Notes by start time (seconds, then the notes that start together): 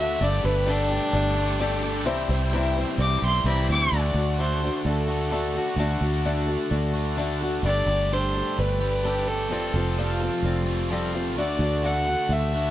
Already playing: D2 D3 A3 D4 F#4 A4
0.00 D4 E5
0.20 G1 G3 A3 D4 G4 A4 D5
0.44 G1 D4 G4 A4 B4
0.66 G3 D4 G4 A4
0.90 D4 G4 A4
1.13 G1 G3 D4 G4 A4
1.36 G3 A3 D4 G4
1.58 G3 A3 D4 G4 A4
1.83 D4 G4 A4
2.05 C2 C3 E3 G3 C4 E4 G4 C5
2.29 C2 G3 C4 E4 C5
2.52 C3 E3 G3 C4 E4 C5
2.77 G3 C4 E4 C5
2.98 C2 G3 C4 E4 C5 D6
3.21 B1 C3 E3 G3 E4 G4
3.26 C6
3.44 C2 C3 E3 G3 C4 E4 C5 B5
3.49 E4 G4
3.69 D2 G3 C4 E4 C5 D6
3.91 D2 D3 A3 D4 F#4 A4 D5
3.96 F#4
4.14 D2 D4 F#4 A4
4.38 D3 A3 D4 F#4 A4 C5
4.62 D4 F#4 A4
4.84 D2 A3 D4 F#4 A4
5.08 A3 D4 F#4
5.12 D3
5.31 D3 A3 D4 F#4 A4
5.35 F#4
5.54 D4 F#4 A4
5.76 D2 D3 A3 D4 F#4 A4
6.01 D2 D4 F#4 A4
6.25 D3 A3 D4 F#4 A4
6.47 D4 F#4 A4
6.70 D2 A3 D4 F#4 A4
6.94 D3 A3 D4 F#4
7.17 D3 A3 D4 F#4 A4
7.41 D4 F#4 A4
7.63 G1 G3 A3 D4 G4 A4 D5
7.67 G4
7.86 G1 G4 A4
7.90 D4
8.11 G3 D4 G4 A4 C5
8.35 D4 G4 A4
8.58 G1 G3 D4 G4 A4 B4
8.81 G3 A3 D4 G4
9.04 G3 A3 D4 G4 A4
9.28 D4 G4 A4
9.50 F1 F2 C3 F3 G3 A3 C4 F4 G4 A4
9.74 F1 C4 F4 A4
9.98 F3 G3 C4 F4 A4
10.20 C4 F4 A4
10.43 F1 G3 C4 F4
10.47 A4
10.66 F2 C3 F3 A3 C4 F4
10.89 F2 C3 F3 G3 A3 C4 F4 A4
11.13 C4 F4 A4
11.36 D2 D3 A3 D4 F#4 A4 D5
11.40 F#4
11.59 D2 D4 F#4 A4
11.82 D3 A3 D4 F#4 A4 F#5
12.07 D4 F#4 A4
12.29 D2 A3 D4 F#4 A4 E5
12.54 D3 A3 D4 F#4